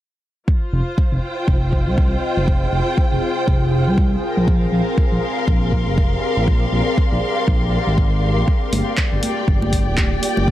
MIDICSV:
0, 0, Header, 1, 5, 480
1, 0, Start_track
1, 0, Tempo, 500000
1, 459, Time_signature, 4, 2, 24, 8
1, 10090, End_track
2, 0, Start_track
2, 0, Title_t, "String section"
2, 0, Program_c, 0, 48
2, 459, Note_on_c, 0, 65, 74
2, 522, Note_on_c, 0, 72, 70
2, 1125, Note_on_c, 0, 79, 75
2, 4060, Note_on_c, 0, 70, 82
2, 4344, Note_on_c, 0, 77, 80
2, 4656, Note_on_c, 0, 84, 64
2, 4945, Note_off_c, 0, 79, 0
2, 5076, Note_off_c, 0, 65, 0
2, 5499, Note_off_c, 0, 72, 0
2, 8140, Note_on_c, 0, 67, 81
2, 8474, Note_on_c, 0, 74, 82
2, 8744, Note_on_c, 0, 79, 82
2, 9279, Note_off_c, 0, 70, 0
2, 9294, Note_off_c, 0, 77, 0
2, 9330, Note_off_c, 0, 84, 0
2, 10090, Note_off_c, 0, 67, 0
2, 10090, Note_off_c, 0, 74, 0
2, 10090, Note_off_c, 0, 79, 0
2, 10090, End_track
3, 0, Start_track
3, 0, Title_t, "Ambient pad"
3, 0, Program_c, 1, 92
3, 459, Note_on_c, 1, 68, 74
3, 459, Note_on_c, 1, 75, 90
3, 460, Note_on_c, 1, 60, 80
3, 460, Note_on_c, 1, 65, 73
3, 2360, Note_off_c, 1, 75, 0
3, 2379, Note_on_c, 1, 77, 90
3, 4023, Note_off_c, 1, 60, 0
3, 4023, Note_off_c, 1, 65, 0
3, 4042, Note_off_c, 1, 77, 0
3, 4058, Note_on_c, 1, 60, 81
3, 4058, Note_on_c, 1, 67, 74
3, 4058, Note_on_c, 1, 74, 92
3, 8100, Note_off_c, 1, 60, 0
3, 8101, Note_off_c, 1, 68, 0
3, 8138, Note_on_c, 1, 58, 82
3, 8139, Note_on_c, 1, 65, 73
3, 10020, Note_off_c, 1, 74, 0
3, 10090, Note_off_c, 1, 58, 0
3, 10090, Note_off_c, 1, 65, 0
3, 10090, Note_off_c, 1, 67, 0
3, 10090, End_track
4, 0, Start_track
4, 0, Title_t, "Analog synth bass"
4, 0, Program_c, 2, 38
4, 698, Note_on_c, 2, 29, 97
4, 784, Note_off_c, 2, 29, 0
4, 1078, Note_on_c, 2, 29, 86
4, 1140, Note_off_c, 2, 29, 0
4, 1418, Note_on_c, 2, 29, 83
4, 1798, Note_on_c, 2, 36, 97
4, 1813, Note_off_c, 2, 29, 0
4, 2077, Note_off_c, 2, 36, 0
4, 2278, Note_on_c, 2, 29, 97
4, 2556, Note_off_c, 2, 29, 0
4, 2617, Note_on_c, 2, 29, 96
4, 2704, Note_off_c, 2, 29, 0
4, 2997, Note_on_c, 2, 29, 84
4, 3059, Note_off_c, 2, 29, 0
4, 3338, Note_on_c, 2, 29, 80
4, 3716, Note_on_c, 2, 36, 98
4, 3731, Note_off_c, 2, 29, 0
4, 3996, Note_off_c, 2, 36, 0
4, 4197, Note_on_c, 2, 34, 99
4, 4476, Note_off_c, 2, 34, 0
4, 4536, Note_on_c, 2, 34, 99
4, 4623, Note_off_c, 2, 34, 0
4, 4917, Note_on_c, 2, 34, 85
4, 4979, Note_off_c, 2, 34, 0
4, 5258, Note_on_c, 2, 34, 83
4, 5636, Note_on_c, 2, 29, 97
4, 5650, Note_off_c, 2, 34, 0
4, 5915, Note_off_c, 2, 29, 0
4, 6116, Note_on_c, 2, 34, 94
4, 6396, Note_off_c, 2, 34, 0
4, 6456, Note_on_c, 2, 34, 95
4, 6543, Note_off_c, 2, 34, 0
4, 6836, Note_on_c, 2, 34, 87
4, 6899, Note_off_c, 2, 34, 0
4, 7178, Note_on_c, 2, 34, 81
4, 7472, Note_off_c, 2, 34, 0
4, 7557, Note_on_c, 2, 32, 90
4, 8038, Note_on_c, 2, 34, 93
4, 8052, Note_off_c, 2, 32, 0
4, 8100, Note_off_c, 2, 34, 0
4, 8378, Note_on_c, 2, 31, 97
4, 8464, Note_off_c, 2, 31, 0
4, 8758, Note_on_c, 2, 31, 84
4, 8820, Note_off_c, 2, 31, 0
4, 9099, Note_on_c, 2, 31, 82
4, 9477, Note_on_c, 2, 26, 97
4, 9492, Note_off_c, 2, 31, 0
4, 9756, Note_off_c, 2, 26, 0
4, 9958, Note_on_c, 2, 31, 98
4, 10090, Note_off_c, 2, 31, 0
4, 10090, End_track
5, 0, Start_track
5, 0, Title_t, "Drums"
5, 459, Note_on_c, 9, 36, 112
5, 555, Note_off_c, 9, 36, 0
5, 939, Note_on_c, 9, 36, 110
5, 1035, Note_off_c, 9, 36, 0
5, 1419, Note_on_c, 9, 36, 113
5, 1515, Note_off_c, 9, 36, 0
5, 1659, Note_on_c, 9, 36, 57
5, 1755, Note_off_c, 9, 36, 0
5, 1899, Note_on_c, 9, 36, 113
5, 1995, Note_off_c, 9, 36, 0
5, 2379, Note_on_c, 9, 36, 116
5, 2475, Note_off_c, 9, 36, 0
5, 2858, Note_on_c, 9, 36, 121
5, 2954, Note_off_c, 9, 36, 0
5, 3338, Note_on_c, 9, 36, 119
5, 3434, Note_off_c, 9, 36, 0
5, 3818, Note_on_c, 9, 36, 121
5, 3914, Note_off_c, 9, 36, 0
5, 4298, Note_on_c, 9, 36, 122
5, 4394, Note_off_c, 9, 36, 0
5, 4778, Note_on_c, 9, 36, 116
5, 4874, Note_off_c, 9, 36, 0
5, 5258, Note_on_c, 9, 36, 121
5, 5354, Note_off_c, 9, 36, 0
5, 5498, Note_on_c, 9, 36, 60
5, 5594, Note_off_c, 9, 36, 0
5, 5738, Note_on_c, 9, 36, 121
5, 5834, Note_off_c, 9, 36, 0
5, 6218, Note_on_c, 9, 36, 121
5, 6314, Note_off_c, 9, 36, 0
5, 6698, Note_on_c, 9, 36, 117
5, 6794, Note_off_c, 9, 36, 0
5, 7178, Note_on_c, 9, 36, 118
5, 7274, Note_off_c, 9, 36, 0
5, 7658, Note_on_c, 9, 36, 119
5, 7754, Note_off_c, 9, 36, 0
5, 8138, Note_on_c, 9, 36, 116
5, 8234, Note_off_c, 9, 36, 0
5, 8378, Note_on_c, 9, 46, 103
5, 8380, Note_on_c, 9, 63, 83
5, 8474, Note_off_c, 9, 46, 0
5, 8476, Note_off_c, 9, 63, 0
5, 8614, Note_on_c, 9, 39, 105
5, 8619, Note_on_c, 9, 36, 118
5, 8710, Note_off_c, 9, 39, 0
5, 8715, Note_off_c, 9, 36, 0
5, 8858, Note_on_c, 9, 46, 102
5, 8862, Note_on_c, 9, 63, 61
5, 8954, Note_off_c, 9, 46, 0
5, 8958, Note_off_c, 9, 63, 0
5, 9099, Note_on_c, 9, 36, 116
5, 9195, Note_off_c, 9, 36, 0
5, 9239, Note_on_c, 9, 63, 93
5, 9335, Note_off_c, 9, 63, 0
5, 9338, Note_on_c, 9, 46, 102
5, 9339, Note_on_c, 9, 36, 58
5, 9434, Note_off_c, 9, 46, 0
5, 9435, Note_off_c, 9, 36, 0
5, 9576, Note_on_c, 9, 39, 105
5, 9579, Note_on_c, 9, 36, 116
5, 9581, Note_on_c, 9, 63, 68
5, 9672, Note_off_c, 9, 39, 0
5, 9675, Note_off_c, 9, 36, 0
5, 9677, Note_off_c, 9, 63, 0
5, 9819, Note_on_c, 9, 46, 104
5, 9915, Note_off_c, 9, 46, 0
5, 9957, Note_on_c, 9, 63, 83
5, 10053, Note_off_c, 9, 63, 0
5, 10059, Note_on_c, 9, 36, 109
5, 10090, Note_off_c, 9, 36, 0
5, 10090, End_track
0, 0, End_of_file